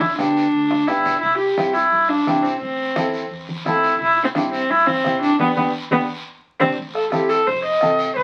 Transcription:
Already playing: fingered electric bass G1
0.00 viola E4, high conga
0.18 fingered electric bass D2, upright piano B3 D4 G4, viola D4, bombo rim, low conga, short guiro
0.37 short guiro
0.53 fingered electric bass D2, long guiro
0.71 bombo rim, low conga
0.87 upright piano B3 D4 G4, viola E4, bombo low, bombo rim, short guiro
1.05 low conga, short guiro
1.21 fingered electric bass C2, viola E4, bombo low, high conga, long guiro
1.38 viola G4
1.57 fingered electric bass G2, upright piano C4 E4 G4, bombo rim, high conga, short guiro
1.73 viola E4, short guiro
1.92 fingered electric bass G2, high conga, long guiro
2.08 viola D4, bombo rim
2.27 fingered electric bass C2, upright piano C4 E4 G4, bombo low, bombo rim, high conga, short guiro
2.43 viola C4, short guiro
2.60 fingered electric bass A1, viola C4, bombo low, high conga, long guiro
2.96 fingered electric bass E2, upright piano C4 E4 A4, bombo rim, high conga, short guiro
3.14 short guiro
3.31 fingered electric bass E2, high conga, long guiro
3.49 high conga
3.66 fingered electric bass A1, upright piano C4 E4 A4, viola E4, bombo low, bombo rim, high conga, short guiro
3.83 short guiro
4.00 fingered electric bass C2, viola E4, bombo low, high conga, long guiro
4.24 viola C4
4.35 fingered electric bass G2, upright piano C4 E4 G4, viola D4, bombo rim, high conga, short guiro
4.52 viola C4, short guiro
4.70 fingered electric bass G2, viola E4, high conga, long guiro
4.87 viola C4, bombo rim, high conga
5.04 fingered electric bass C2, upright piano C4 E4 G4, bombo low, bombo rim, high conga, short guiro
5.22 viola D4, short guiro
5.39 fingered electric bass G1, viola B3, upright piano B3 D4 G4, bombo low, high conga, long guiro
5.56 fingered electric bass G1, viola B3, upright piano B3 D4 G4, bombo low, high conga, long guiro
5.91 fingered electric bass G1, upright piano B3 D4 G4, viola B3, bombo low, high conga, long guiro
6.60 fingered electric bass C2, viola C4, upright piano C4 D4 G4, bombo low, high conga, long guiro
6.78 fingered electric bass A1, bombo low, high conga, long guiro
6.95 viola A4, bombo rim
7.12 upright piano C4 E4 A4, viola G4, bombo rim, high conga, short guiro
7.29 viola A4, short guiro
7.47 fingered electric bass F1, viola C5, bombo low, high conga, low conga, long guiro
7.65 viola D#5
7.81 fingered electric bass C2, upright piano C4 F4 A4, bombo rim, high conga, short guiro
7.99 short guiro
8.16 fingered electric bass C2, viola C5, bombo low, high conga, long guiro

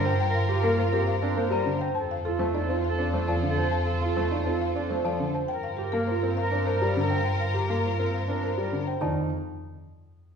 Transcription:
Already playing: double bass G2, string section F4 A#4, soprano saxophone A#4
0.05 grand piano C5, marimba G5
0.20 marimba G5
0.27 soprano saxophone A#4
0.34 marimba F5
0.49 grand piano G4, marimba G4
0.58 soprano saxophone A#4
0.63 grand piano A#3, marimba A#4
0.78 grand piano F4, marimba C5
0.89 grand piano C4, soprano saxophone A#4
0.93 grand piano G4, marimba A#4
1.07 marimba F5
1.20 grand piano C4 D4, soprano saxophone A#4, marimba C5
1.37 grand piano A#3 C5, marimba A#4
1.51 grand piano G3, soprano saxophone A#4, marimba C5, celesta A#5
1.66 grand piano D3
1.81 grand piano C5, marimba G5
1.95 double bass F2, string section F4 A4, soprano saxophone A4, marimba A5
2.11 marimba F5
2.25 grand piano F4, marimba A4, soprano saxophone A4
2.39 grand piano A3, marimba C5
2.54 grand piano D#4, soprano saxophone A4, marimba D5
2.69 grand piano C4 F4, marimba C5
2.85 soprano saxophone A4, marimba F5
2.98 grand piano C4 D4, marimba D5
3.13 grand piano A3 C5, marimba C5
3.19 soprano saxophone A4
3.28 grand piano F3, marimba D5, celesta A5
3.43 grand piano D3
3.49 soprano saxophone A4
3.57 grand piano C5, marimba A5
3.71 marimba A5
3.80 soprano saxophone A4
3.87 marimba F5
4.01 grand piano F4, marimba A4
4.11 soprano saxophone A4
4.16 grand piano A3, marimba C5
4.31 grand piano D#4, marimba D5
4.41 soprano saxophone A4
4.46 grand piano C4 F4, marimba C5
4.61 marimba F5
4.72 grand piano C4 D4, soprano saxophone A4, marimba D5
4.90 grand piano A3 C5, marimba C5
5.04 grand piano F3, soprano saxophone A4, marimba D5, celesta A5
5.20 grand piano D3
5.34 grand piano C5, marimba A5
5.48 double bass G2, string section F4 A#4, soprano saxophone A#4, marimba G5
5.63 marimba F5
5.77 marimba G4, grand piano G4, soprano saxophone A#4
5.92 grand piano A#3, marimba A#4
6.07 grand piano F4, soprano saxophone A#4, marimba C5
6.22 grand piano C4, marimba A#4
6.37 marimba F5
6.41 soprano saxophone A#4
6.51 grand piano C4 D4, marimba C5
6.66 marimba A#4, grand piano C5
6.72 soprano saxophone A#4
6.82 grand piano G3
6.96 grand piano D3
7.03 soprano saxophone A#4
7.10 grand piano C5, marimba G5
7.24 marimba G5
7.34 soprano saxophone A#4
7.41 marimba F5
7.54 grand piano G4, marimba G4
7.64 soprano saxophone A#4
7.70 grand piano A#3, marimba A#4
7.84 grand piano F4, marimba C5
7.95 soprano saxophone A#4
7.99 grand piano C4, marimba A#4
8.14 marimba F5
8.26 grand piano C4 D4, soprano saxophone A#4, marimba C5
8.43 marimba A#4, grand piano C5
8.57 grand piano G3, soprano saxophone A#4
8.72 grand piano D3
8.87 grand piano C5, marimba G5
9.01 double bass F2, grand piano D#3 D#4, marimba D5, celesta A5

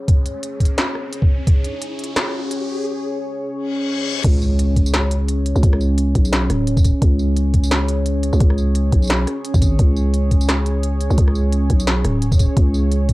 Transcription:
Already playing: analog synth pad C#4 G#4 C#5, riser
0.08 kick, closed hi-hat
0.26 closed hi-hat
0.43 closed hi-hat
0.60 kick, closed hi-hat
0.65 closed hi-hat
0.78 snare, closed hi-hat
0.95 cross-stick
1.13 closed hi-hat
1.22 kick
1.47 kick, closed hi-hat
1.64 closed hi-hat
1.82 closed hi-hat
1.99 closed hi-hat
2.04 closed hi-hat
2.16 cross-stick, snare, closed hi-hat
2.51 closed hi-hat
3.55 reverse cymbal
4.24 808-style bass C#2, kick, closed hi-hat, crash, impact
4.42 tambourine
4.59 closed hi-hat
4.76 kick, closed hi-hat
4.86 tambourine
4.94 cross-stick, snare, closed hi-hat
5.11 closed hi-hat
5.29 closed hi-hat
5.46 closed hi-hat
5.56 808-style bass C#2, tambourine
5.63 808-style bass C#2, kick, closed hi-hat
5.73 cross-stick
5.81 tambourine
5.98 closed hi-hat
6.15 808-style bass B1, kick, closed hi-hat
6.25 tambourine
6.33 snare, closed hi-hat
6.50 808-style bass D1, cross-stick, closed hi-hat
6.67 closed hi-hat
6.77 kick, tambourine
6.85 kick, closed hi-hat, tambourine
7.02 808-style bass C#2, kick, closed hi-hat
7.19 tambourine
7.37 closed hi-hat
7.54 kick, closed hi-hat
7.64 tambourine
7.71 cross-stick, snare, closed hi-hat
7.89 closed hi-hat
8.06 closed hi-hat
8.23 closed hi-hat
8.33 808-style bass C#2, tambourine
8.40 808-style bass C#2, kick, closed hi-hat
8.50 cross-stick
8.58 tambourine
8.75 closed hi-hat
8.92 808-style bass B1, kick, closed hi-hat
9.02 tambourine
9.04 tambourine
9.07 snare, closed hi-hat, tambourine
9.27 cross-stick, closed hi-hat
9.45 closed hi-hat
9.54 808-style bass G#1, kick, tambourine
9.62 kick, closed hi-hat, tambourine
9.79 808-style bass C#2, kick, closed hi-hat
9.96 tambourine
10.14 closed hi-hat
10.31 kick, closed hi-hat
10.41 tambourine
10.49 cross-stick, snare, closed hi-hat
10.66 closed hi-hat
10.83 closed hi-hat
11.01 closed hi-hat
11.10 808-style bass C#2, tambourine
11.18 808-style bass C#2, kick, closed hi-hat
11.28 cross-stick
11.35 tambourine
11.52 closed hi-hat
11.70 808-style bass B1, kick, closed hi-hat
11.80 tambourine
11.87 snare, closed hi-hat
12.05 808-style bass D1, cross-stick, closed hi-hat
12.22 closed hi-hat
12.32 kick, tambourine
12.39 kick, closed hi-hat, tambourine
12.57 808-style bass C#2, kick, closed hi-hat
12.74 tambourine
12.92 closed hi-hat
13.09 kick, closed hi-hat

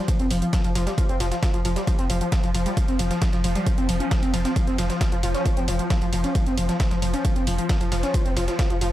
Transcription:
Already playing: synth drone F3
0.08 analog synth lead F3, kick, closed hi-hat, ride
0.20 sub bass F1, analog synth lead C4, closed hi-hat
0.31 sub bass F1, analog synth lead F3, open hi-hat
0.42 analog synth lead F3, closed hi-hat
0.53 analog synth lead F3, kick, snare, closed hi-hat, ride
0.64 sub bass F1, analog synth lead F3, closed hi-hat, ride
0.75 sub bass F1, analog synth lead F3, snare, open hi-hat, ride
0.87 analog synth lead G3, snare, closed hi-hat
0.98 analog synth lead F3, kick, closed hi-hat, ride
1.09 sub bass F1, analog synth lead C4, closed hi-hat
1.20 sub bass F1, analog synth lead F3, snare, open hi-hat, ride
1.31 analog synth lead F3, snare, closed hi-hat
1.43 analog synth lead F3, kick, snare, closed hi-hat, ride
1.54 sub bass F1, analog synth lead F3, closed hi-hat
1.65 sub bass F1, analog synth lead F3, open hi-hat, ride
1.76 analog synth lead G3, snare, closed hi-hat
1.87 analog synth lead F3, kick, closed hi-hat, ride
1.99 sub bass F1, analog synth lead C4, closed hi-hat
2.10 sub bass F1, analog synth lead F3, open hi-hat, ride
2.21 analog synth lead F3, closed hi-hat
2.32 analog synth lead F3, kick, snare, closed hi-hat, ride
2.43 sub bass F1, analog synth lead F3, closed hi-hat, ride
2.54 sub bass F1, analog synth lead F3, open hi-hat, ride
2.66 analog synth lead G3, closed hi-hat, ride
2.77 analog synth lead F3, kick, closed hi-hat, ride
2.88 sub bass F1, analog synth lead C4, closed hi-hat
2.99 sub bass F1, analog synth lead F3, open hi-hat, ride
3.11 analog synth lead F3, snare, closed hi-hat
3.22 analog synth lead F3, kick, snare, closed hi-hat, ride
3.33 sub bass F1, analog synth lead F3, snare, closed hi-hat
3.44 sub bass F1, analog synth lead F3, open hi-hat, ride
3.55 analog synth lead G3, snare, closed hi-hat
3.66 analog synth lead F3, kick, closed hi-hat, ride
3.78 sub bass F1, analog synth lead C4, closed hi-hat
3.89 sub bass F1, analog synth lead F3, open hi-hat
4.00 analog synth lead C#4, closed hi-hat
4.11 analog synth lead F3, kick, snare, closed hi-hat, ride
4.22 sub bass F1, analog synth lead C4, closed hi-hat, ride
4.34 sub bass F1, analog synth lead F3, snare, open hi-hat, ride
4.45 analog synth lead C4, snare, closed hi-hat
4.56 analog synth lead F3, kick, closed hi-hat, ride
4.67 sub bass F1, analog synth lead C4, closed hi-hat
4.78 sub bass F1, analog synth lead F3, snare, open hi-hat, ride
4.90 analog synth lead F3, snare, closed hi-hat
5.01 analog synth lead F3, kick, snare, closed hi-hat, ride
5.12 sub bass F1, analog synth lead F3, closed hi-hat
5.23 sub bass F1, analog synth lead F3, open hi-hat, ride
5.34 analog synth lead C#4, snare, closed hi-hat
5.46 analog synth lead F3, kick, closed hi-hat, ride
5.57 sub bass F1, analog synth lead C4, closed hi-hat
5.68 sub bass F1, analog synth lead F3, open hi-hat, ride
5.79 analog synth lead F3, closed hi-hat
5.90 analog synth lead F3, kick, snare, closed hi-hat, ride
6.01 sub bass F1, analog synth lead F3, closed hi-hat, ride
6.12 sub bass F1, analog synth lead F3, open hi-hat, ride
6.24 analog synth lead C#4, closed hi-hat, ride
6.35 analog synth lead F3, kick, closed hi-hat, ride
6.46 sub bass F1, analog synth lead C4, closed hi-hat
6.57 sub bass F1, analog synth lead F3, open hi-hat, ride
6.69 analog synth lead F3, snare, closed hi-hat
6.80 analog synth lead F3, kick, snare, closed hi-hat, ride
6.91 sub bass F1, analog synth lead F3, snare, closed hi-hat
7.02 sub bass F1, analog synth lead F3, open hi-hat, ride
7.14 analog synth lead C#4, snare, closed hi-hat
7.25 analog synth lead F3, kick, closed hi-hat, ride
7.36 sub bass F1, analog synth lead C4, closed hi-hat
7.47 sub bass F1, analog synth lead F3, open hi-hat
7.58 analog synth lead F3, closed hi-hat
7.69 analog synth lead F3, kick, snare, closed hi-hat, ride
7.81 sub bass F1, analog synth lead F3, closed hi-hat, ride
7.92 sub bass F1, analog synth lead F3, snare, open hi-hat, ride
8.03 analog synth lead C#4, snare, closed hi-hat
8.14 analog synth lead F3, kick, closed hi-hat, ride
8.25 sub bass F1, analog synth lead C4, closed hi-hat
8.37 sub bass F1, analog synth lead F3, snare, open hi-hat, ride
8.48 analog synth lead F3, snare, closed hi-hat
8.59 analog synth lead F3, kick, snare, closed hi-hat, ride
8.70 sub bass F1, analog synth lead F3, closed hi-hat
8.81 sub bass F1, analog synth lead F3, open hi-hat, ride

